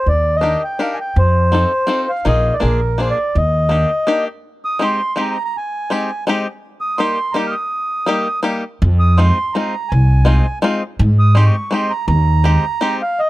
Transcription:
0.06 D#2 D5
0.36 D#5
0.41 D4 D#4 G4 A#4
0.64 G5
0.79 D4 D#4 G4 A#4 F5
0.94 G#5
1.00 G5
1.16 F2 C5
1.52 C4 D#4 F4 A4
1.87 C4 D#4 F4 A4
2.09 F5
2.25 A#1 A#3 D#4 F4 G#4 D#5
2.54 D5
2.60 A#1 A#3 D4 F4 G#4 A#4
2.98 A#3 D4 F4 G#4 C5
3.10 D5
3.35 D#2 D#5
3.69 A#3 D4 D#4 G4
4.07 A#3 D4 D#4 G4
4.65 D#6
4.79 G#3 C4 D#4 G4
4.83 C6
5.16 G#3 C4 D#4 G4
5.20 A#5
5.31 A#5
5.45 A#5
5.57 G#5
5.90 G#3 C4 D#4 G4
6.27 G#3 C4 D#4 G4
6.81 D#6
6.98 G3 A#3 D#4 G4 C6
7.32 G3 A#3 D#4 A#5
7.36 G4
7.47 D#6 F6
8.06 G3 A#3 D#4 G4
8.43 G3 A#3 D#4 G4
8.82 F2
9.00 D#6
9.18 G#3 C4 D#4 F4 C6
9.53 G#3 C4 D#4 F4 A#5
9.89 C2 G#5
10.25 G#3 C4 D#4 F4
10.62 G#3 C4 D#4 F4
10.99 G#2
11.19 D#6
11.35 G#3 C4 D#4 G4 C6
11.46 C#6
11.71 G#3 C4 D#4 G4 C6
11.91 A#5
12.08 D#2 A#5
12.44 G#3 C4 D#4 G4
12.81 G#3 C4 D#4 G4
13.02 F5
13.20 D#5

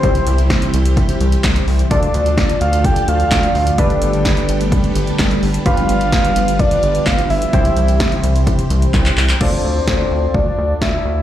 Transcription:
Already playing: G3 C5
0.03 C2 C3 E3 C4 E4 G4 C5, kick, closed hi-hat
0.15 closed hi-hat
0.27 C2, closed hi-hat
0.38 closed hi-hat
0.50 kick, snare, closed hi-hat
0.62 closed hi-hat
0.74 C2, closed hi-hat
0.86 closed hi-hat
0.97 kick, closed hi-hat
1.09 closed hi-hat
1.21 C2, closed hi-hat
1.32 closed hi-hat
1.44 C2, kick, snare, clap, closed hi-hat
1.56 closed hi-hat
1.67 C2, open hi-hat
1.79 closed hi-hat
1.91 D2 D3 F3 A3 D4 F4 A4 D5, kick, closed hi-hat
2.03 closed hi-hat
2.14 D2, closed hi-hat
2.26 closed hi-hat
2.38 kick, snare, closed hi-hat
2.49 closed hi-hat
2.61 D2 F5, closed hi-hat
2.73 closed hi-hat
2.84 G5, kick, closed hi-hat
2.96 closed hi-hat
3.08 D2 F5, closed hi-hat
3.20 closed hi-hat
3.31 D2, kick, snare, clap, closed hi-hat
3.43 closed hi-hat
3.55 D2, open hi-hat
3.67 closed hi-hat
3.78 G1 G3 B3 D4 G4 A4 B4 D5, kick, closed hi-hat
3.90 closed hi-hat
4.02 G1, closed hi-hat
4.13 closed hi-hat
4.25 kick, snare, closed hi-hat
4.37 closed hi-hat
4.49 G1, closed hi-hat
4.61 closed hi-hat
4.72 kick, closed hi-hat
4.84 closed hi-hat
4.95 G1, closed hi-hat
5.07 closed hi-hat
5.19 G1, kick, snare, clap, closed hi-hat
5.31 closed hi-hat
5.43 G1, open hi-hat
5.54 closed hi-hat
5.66 G1 F3 B3 D4 F4 G4 B4 F5, kick, closed hi-hat
5.77 closed hi-hat
5.89 G1, closed hi-hat
6.01 closed hi-hat
6.12 kick, snare, closed hi-hat
6.25 closed hi-hat
6.36 G1, closed hi-hat
6.48 closed hi-hat
6.59 D5, kick, closed hi-hat
6.71 closed hi-hat
6.83 G1, closed hi-hat
6.95 closed hi-hat
7.06 G1 F5, kick, snare, clap, closed hi-hat
7.18 closed hi-hat
7.30 G1 E5, open hi-hat
7.42 closed hi-hat
7.53 C2 C3 E3 C4 E4 G4 C5, kick, closed hi-hat
7.65 closed hi-hat
7.77 C2, closed hi-hat
7.88 closed hi-hat
8.00 kick, snare, closed hi-hat
8.12 closed hi-hat
8.23 C2, closed hi-hat
8.36 closed hi-hat
8.47 kick, closed hi-hat
8.59 closed hi-hat
8.70 C2, closed hi-hat
8.82 closed hi-hat
8.94 C2, kick, clap, closed hi-hat
9.06 clap, closed hi-hat
9.17 C2, clap, open hi-hat
9.29 clap, closed hi-hat
9.41 D2 D4 F4 A4 C5 D5, kick, crash
9.64 D2
9.88 D2, kick, snare
10.11 D2
10.34 D2 D5, kick
10.58 D2
10.81 D2 E5, kick, snare
11.05 D2

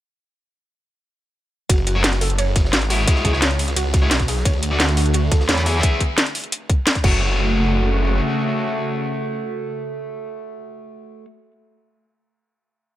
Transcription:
1.69 F#1 F#4, kick, closed hi-hat, ride
1.78 ride
1.87 F#4, closed hi-hat, ride
1.95 A3 F#4 C#5
2.04 F#4, snare, closed hi-hat, ride
2.13 snare, closed hi-hat
2.21 A4, snare, open hi-hat, ride
2.30 closed hi-hat
2.38 C#5, closed hi-hat, ride
2.56 F#1, kick, snare, closed hi-hat, ride
2.65 snare
2.73 G#1 F#4, snare, closed hi-hat, ride
2.82 closed hi-hat, ride
2.90 G#3 E4 F#4 C#5, snare, open hi-hat, ride
2.99 ride
3.07 F#4, kick, closed hi-hat, ride
3.16 snare
3.25 C#2 G#4, kick, closed hi-hat, ride
3.33 G#3 E4 C#5, snare
3.42 C#5, snare, closed hi-hat, ride
3.51 closed hi-hat
3.59 open hi-hat, ride
3.68 snare, closed hi-hat
3.76 C#2 F#4, closed hi-hat, ride
3.94 F#4, kick, snare, closed hi-hat, ride
4.02 G#3 E4 C#5
4.11 B1 F#4, snare, closed hi-hat, ride
4.20 kick, snare, closed hi-hat
4.27 G#4, snare, open hi-hat, ride
4.37 snare
4.45 D2 D3 A3 F#4 C#5, kick, closed hi-hat, ride
4.53 ride
4.63 closed hi-hat, ride
4.71 A3 F#4 D5
4.79 F#4, snare, closed hi-hat, ride
4.89 snare, closed hi-hat
4.96 F#4, snare, open hi-hat, ride
5.06 closed hi-hat
5.13 F#4, closed hi-hat, ride
5.31 D2 A4, kick, snare, closed hi-hat, ride
5.40 snare
5.48 E2 C#5, snare, closed hi-hat, ride
5.57 closed hi-hat, ride
5.65 B3 G#4 E5, snare, open hi-hat, ride
5.74 ride
5.83 kick, closed hi-hat
6.00 kick, closed hi-hat
6.18 snare, closed hi-hat
6.26 closed hi-hat
6.35 open hi-hat
6.44 closed hi-hat
6.52 closed hi-hat
6.70 kick, closed hi-hat
6.87 snare, closed hi-hat
6.95 kick, closed hi-hat
7.04 F#1 C#3 A3 F#4 C#5, kick, crash

